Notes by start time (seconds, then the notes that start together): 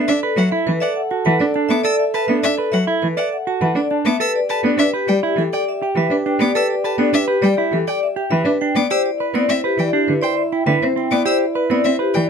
Already playing: D4 A4 E5
0.08 D4 D5 E5
0.23 A4 B4
0.36 F#3 E5 F#5
0.52 E4 A4
0.67 E3 B4
0.80 D5 E5 F#5
0.96 F#5
1.11 F#4 A5
1.25 E3 B4 F#5
1.40 D4 D5
1.54 D4 A5
1.69 B3 E5 D6
1.83 A4 D5 E6
1.99 E5
2.14 B4 A5
2.28 B3 D4 E5
2.43 D4 D5 E5
2.58 A4 B4
2.72 F#3 E5 F#5
2.87 E4 A4
3.02 E3 B4
3.17 D5 E5 F#5
3.32 F#5
3.47 F#4 A5
3.61 E3 B4 F#5
3.75 D4 D5
3.91 D4 A5
4.05 B3 E5 D6
4.20 G4 A4 B4 E6
4.36 D5
4.49 A4 B4 A5
4.63 B3 D4 D5
4.78 D4 B4 E5
4.94 G4 B4
5.08 G3 D5 G5
5.23 E4 G4
5.36 E3 A4
5.53 D5 G5
5.68 E5
5.82 G4 G5
5.95 E3 B4 E5
6.10 D4 B4
6.26 D4 G5
6.39 B3 D5 D6
6.55 A4 B4 E6
6.70 D5
6.84 A4 B4 A5
6.98 B3 D4 D5
7.13 D4 B4 E5
7.28 G4 B4
7.42 G3 D5 G5
7.57 E4 G4
7.72 E3 A4
7.87 D5 G5
8.03 E5
8.16 G4 G5
8.31 E3 B4 E5
8.45 D4 B4
8.61 D4 G5
8.75 B3 D5 D6
8.90 E4 G4 C5 E6
9.06 D5
9.20 B4
9.34 B3 C4 D5
9.49 C4 C5 E5
9.64 G4 B4
9.78 E3 D5 G5
9.93 D4 G4
10.08 D3 B4
10.22 C5 D5 G5
10.37 E5
10.52 E4 G5
10.67 D3 B4 E5
10.82 C4 C5
10.96 C4 G5
11.11 B3 D5 D6
11.25 G4 C5 E6
11.41 D5
11.55 B4
11.70 B3 C4 D5
11.84 C4 C5 E5
11.99 G4 B4
12.14 E3 D5 G5